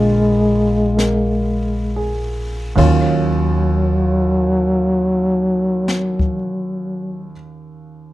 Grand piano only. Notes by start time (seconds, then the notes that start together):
Already playing: D3 G#3 A#3 B3 F4
0.97 A#4
1.96 G#4
2.76 D#2 D#3 F#3 C#4 F4